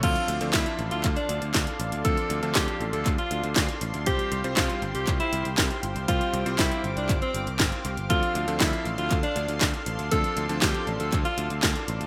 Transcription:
0.03 D2 F3 C4 D4 F4 A4 D5 F5 C6, kick, closed hi-hat, crash
0.16 closed hi-hat
0.28 D2, closed hi-hat
0.41 D2 F3 C4 D4 A4, closed hi-hat
0.53 D2 E4, kick, snare, clap, closed hi-hat
0.66 closed hi-hat
0.79 A1, closed hi-hat
0.91 D2 F4, closed hi-hat
1.04 D2, kick, clap, closed hi-hat
1.16 D4, closed hi-hat
1.29 D2, closed hi-hat
1.42 D2, closed hi-hat
1.54 D2, kick, snare, clap, closed hi-hat
1.67 closed hi-hat
1.80 A1, closed hi-hat
1.92 D2, closed hi-hat
2.05 D2 F3 C4 D4 A4, kick, closed hi-hat
2.17 closed hi-hat
2.30 D2, closed hi-hat
2.43 D2 F3 C4 D4 A4, closed hi-hat
2.55 D2 G4, kick, snare, clap, closed hi-hat
2.68 closed hi-hat
2.80 A1, closed hi-hat
2.93 D2 A4, closed hi-hat
3.06 D2, kick, clap, closed hi-hat
3.18 F4, closed hi-hat
3.31 D2, closed hi-hat
3.44 D2, closed hi-hat
3.56 D2, kick, snare, clap, closed hi-hat
3.69 closed hi-hat
3.81 A1, closed hi-hat
3.94 D2, closed hi-hat
4.06 C2 G3 C4 F4 G4 C5 F5, kick, closed hi-hat
4.19 closed hi-hat
4.32 C2, closed hi-hat
4.44 C2 G3 C4 F4 C5, closed hi-hat
4.57 C2 F4, kick, snare, clap, closed hi-hat
4.70 closed hi-hat
4.82 G1, closed hi-hat
4.95 C2 G4, closed hi-hat
5.07 C2, kick, clap, closed hi-hat
5.20 E4, closed hi-hat
5.33 C2, closed hi-hat
5.45 C2, closed hi-hat
5.58 C2, kick, snare, clap, closed hi-hat
5.71 closed hi-hat
5.83 G1, closed hi-hat
5.96 C2, closed hi-hat
6.08 C2 G3 C4 F4 C5 D6, kick, closed hi-hat
6.21 closed hi-hat
6.33 C2, closed hi-hat
6.46 C2 G3 C4 F4 C5, closed hi-hat
6.59 C2 E4, kick, snare, clap, closed hi-hat
6.72 closed hi-hat
6.84 G1, closed hi-hat
6.96 C2 D4, closed hi-hat
7.09 G1, kick, clap, closed hi-hat
7.22 C4, closed hi-hat
7.34 G1, closed hi-hat
7.47 C2, closed hi-hat
7.60 G1, kick, snare, clap, closed hi-hat
7.72 closed hi-hat
7.85 C2, closed hi-hat
7.97 G1, closed hi-hat
8.10 D2 F3 C4 D4 F4 A4 D5 C6, kick, closed hi-hat
8.23 closed hi-hat
8.35 D2, closed hi-hat
8.48 D2 F3 C4 D4 A4, closed hi-hat
8.60 D2 E4, kick, snare, clap, closed hi-hat
8.73 closed hi-hat
8.85 A1, closed hi-hat
8.98 D2 F4, closed hi-hat
9.11 D2, kick, clap, closed hi-hat
9.23 D4, closed hi-hat
9.36 D2, closed hi-hat
9.48 D2, closed hi-hat
9.61 D2, kick, snare, clap, closed hi-hat
9.74 closed hi-hat
9.86 A1, closed hi-hat
9.99 D2, closed hi-hat
10.11 D2 F3 C4 D4 A4, kick, closed hi-hat
10.24 closed hi-hat
10.37 D2, closed hi-hat
10.49 D2 F3 C4 D4 A4, closed hi-hat
10.62 D2 G4, kick, snare, clap, closed hi-hat
10.74 closed hi-hat
10.87 A1, closed hi-hat
11.00 D2 A4, closed hi-hat
11.12 D2, kick, clap, closed hi-hat
11.25 F4, closed hi-hat
11.38 D2, closed hi-hat
11.50 D2, closed hi-hat
11.63 D2, kick, snare, clap, closed hi-hat
11.76 closed hi-hat
11.88 A1, closed hi-hat
12.01 D2, closed hi-hat

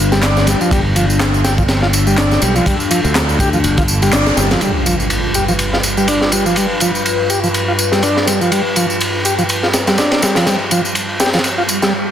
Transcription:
Already playing: G1 G3 D4 F4 B4
0.12 G3, snare, tambourine
0.23 D4, snare, clap, ride, tambourine
0.37 snare, tambourine
0.47 G3, snare, ride, tambourine
0.61 F3, tambourine
0.71 G1 G3 A4, kick, ride, tambourine
0.96 F3, ride, tambourine
1.10 tambourine
1.20 snare, clap, ride, tambourine
1.34 tambourine
1.44 G4, snare, ride, tambourine
1.58 F3, kick, tambourine
1.68 snare, ride, tambourine
1.82 F4, snare
1.93 ride, tambourine
2.07 G3, tambourine
2.17 D4, snare, clap, ride, tambourine
2.31 snare, tambourine
2.42 B1 G3, ride, tambourine
2.56 F3, tambourine
2.66 G3, kick, ride, tambourine
2.80 tambourine
2.91 F3, ride, tambourine
3.04 D2, tambourine
3.15 snare, clap, ride, tambourine
3.29 tambourine
3.39 G4, kick, ride, tambourine
3.53 F3, tambourine
3.64 G1, ride, tambourine
3.78 F4, kick, ride, tambourine
3.88 tambourine
4.02 G3, ride, tambourine
4.13 G1 D4, snare, clap, ride, tambourine
4.26 snare, ride, tambourine
4.37 G1 G3, snare, ride, tambourine
4.51 F3, snare, ride, tambourine
4.61 G2 G3 F4 B4, ride, tambourine, impact
4.86 F3, ride, tambourine
5.00 tambourine
5.10 ride, tambourine
5.34 G4, ride, tambourine
5.48 F3, tambourine
5.59 ride, tambourine
5.73 F4, snare
5.83 ride, tambourine
5.97 G3, tambourine
6.08 D4, ride, tambourine
6.21 snare
6.32 G3, ride, tambourine
6.46 F3, tambourine
6.56 G3, ride, tambourine
6.80 F3, ride, tambourine
6.95 tambourine
7.06 ride, tambourine
7.30 G4, ride, tambourine
7.44 F3, tambourine
7.54 ride, tambourine
7.68 F4
7.79 ride, tambourine
7.92 G3, snare, tambourine
8.03 D4, ride, tambourine
8.17 snare
8.26 G3, snare, ride, tambourine
8.41 F3, tambourine
8.52 G3, ride, tambourine
8.76 F3, ride, tambourine
8.90 tambourine
9.01 ride, tambourine
9.25 G4, ride, tambourine
9.39 F3, tambourine
9.49 ride, tambourine
9.63 F4, snare
9.73 snare, ride, tambourine
9.87 G3, snare, ride, tambourine
9.98 D4, snare, ride, tambourine
10.12 snare, ride
10.22 G3, snare, ride, tambourine
10.35 F3, snare, ride, tambourine
10.46 G3, snare, ride, tambourine
10.71 F3, ride, tambourine
10.85 tambourine
10.95 ride, tambourine
11.20 G4, snare, ride, tambourine
11.26 snare, ride
11.33 F3, snare, ride, tambourine
11.39 snare, ride
11.44 ride, tambourine, swell
11.58 F4
11.69 ride, tambourine
11.82 G3, snare, tambourine

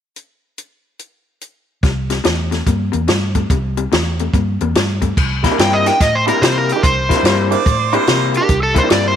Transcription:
0.16 closed hi-hat
0.58 closed hi-hat
0.99 closed hi-hat
1.41 closed hi-hat
1.83 C2 C3 G3, kick, snare, closed hi-hat
2.10 C3 G3, snare, closed hi-hat
2.24 E2 C3 A3, snare, closed hi-hat
2.51 C3 A3, snare, closed hi-hat
2.66 G2 C3 A#3, kick, closed hi-hat
2.92 E2 C3 A#3, closed hi-hat
3.08 G2 C3 A3, snare, closed hi-hat
3.35 C3 A3, kick, closed hi-hat
3.50 C2 C3 G3, kick, closed hi-hat
3.77 C3 G3, closed hi-hat
3.92 E2 C3 A3, snare, closed hi-hat
4.19 C3 A3, closed hi-hat
4.34 G2 C3 A#3, kick, closed hi-hat
4.61 E2 C3 A#3, closed hi-hat
4.75 G2 C3 A3, snare, closed hi-hat
5.02 C3 A3, kick, closed hi-hat
5.17 C2, kick, crash
5.43 C3 G3 A#3 E4 G4 A#4, kick, snare, closed hi-hat
5.51 D4 E4 G4 A#4
5.59 G2 C3 G3 A#3 E4 G5, snare, closed hi-hat
5.73 D#5
5.86 D4 E4 G4 A#4 G5, snare, closed hi-hat
6.00 A2 D#5, kick, snare, closed hi-hat
6.15 C5
6.27 C3 G3 A#3 D4 E4 G4 A#4, closed hi-hat
6.41 C3 G3 A#3 E4 C5, snare, closed hi-hat
6.58 A#4
6.69 G4 A#4, closed hi-hat
6.76 D4 E4 G4 A#4
6.83 C2 C5, kick, closed hi-hat
7.09 C3 G3 A#3 E4 G4 A#4, kick, snare, closed hi-hat
7.16 D4 E4 G4 A#4
7.23 G2 C3 G3 A#3 E4, snare, closed hi-hat
7.51 D4 E4 G4 A#4 D5, closed hi-hat
7.66 A2, kick, closed hi-hat
7.93 C3 G3 A#3 D4 E4 G4 A#4 C5, closed hi-hat
8.07 C3 G3 A#3 E4, snare, closed hi-hat
8.34 G4 A#4, closed hi-hat
8.41 D4 E4 G4 A#4
8.49 C2, kick, closed hi-hat
8.63 A4
8.74 C3 G3 A#3 E4 G4 A#4 C5, kick, closed hi-hat
8.83 D4 E4 G4 A#4
8.90 G2 C3 G3 A#3 E4 D5, snare, closed hi-hat
9.08 C5

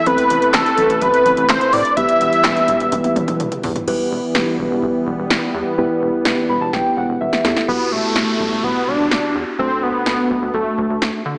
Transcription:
0.06 A1 C3 A3 C4 E4 A4 B4, kick, closed hi-hat
0.18 closed hi-hat
0.30 A1, closed hi-hat
0.42 closed hi-hat
0.54 A1 A4, snare, clap, closed hi-hat
0.66 closed hi-hat
0.78 A1, kick, closed hi-hat
0.90 A1, closed hi-hat
1.02 A1 B4, kick, closed hi-hat
1.14 closed hi-hat
1.26 A1, kick, closed hi-hat
1.37 A1, closed hi-hat
1.49 A1 C5, snare, clap, closed hi-hat
1.61 closed hi-hat
1.73 A2 D5, open hi-hat
1.85 closed hi-hat
1.97 E1 E3 G3 B3 E4 G4 B4 E5, kick, closed hi-hat
2.09 closed hi-hat
2.21 E1, closed hi-hat
2.33 closed hi-hat
2.44 E1, snare, clap, closed hi-hat
2.57 closed hi-hat
2.68 E1, kick, closed hi-hat
2.80 E1, closed hi-hat
2.92 E1, kick, closed hi-hat, high tom
3.04 closed hi-hat, high tom
3.16 E1, closed hi-hat, mid tom
3.28 E1, closed hi-hat, mid tom
3.40 E1, closed hi-hat, mid tom
3.52 closed hi-hat, mid tom
3.63 E2, floor tom, open hi-hat
3.76 closed hi-hat, floor tom
3.87 E1 E3 G3 B3 E4 G4 B4, kick, crash
4.11 E1
4.35 E1, snare
4.59 E1, kick
4.71 E1
4.82 E1, kick
5.07 E1, kick
5.18 E1
5.30 E1, snare
5.54 E2
5.78 E1 B3 E4 G4 B4
6.02 E1
6.25 E1, snare
6.49 E1 B5
6.61 E1 A5
6.73 E1 G5, kick, snare
6.97 E1 F#5
7.09 E1
7.21 E1 E5
7.33 snare
7.45 E2 B3 E4 G4 A4, snare
7.57 snare
7.68 E1 B3 E4 F#4 G4, kick, downlifter
7.92 E1 A3
8.16 E1, snare
8.40 E1, kick
8.52 E1
8.63 E1 B3, kick
8.88 E1 D4
8.99 E1
9.11 E1, snare
9.35 E2
9.59 D2 A3 C4 D4 F#4 A4, kick
9.83 D2 B3
10.06 D2, snare
10.30 D2, kick
10.42 D2
10.54 D2 A3, kick
10.78 D2, kick
10.90 D2
11.02 D2, snare
11.26 D3

